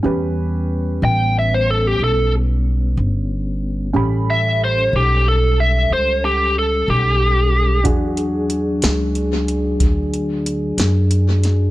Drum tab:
HH |------------|------------|xxxxxxxxxxxx|
SD |------------|------------|---o-----o-o|
BD |------------|------------|o-----o-----|